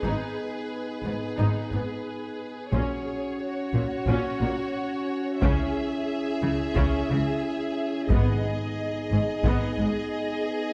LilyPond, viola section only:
\new Staff \with { instrumentName = "Viola section" } { \time 4/4 \key gis \minor \tempo 4 = 89 dis'8 r4 b8 dis'8 b8 r4 | cis'8 r4 ais8 cis'8 ais8 r4 | cis'8 r4 gis8 cis'8 gis8 r4 | b8 r4 gis8 b8 gis8 r4 | }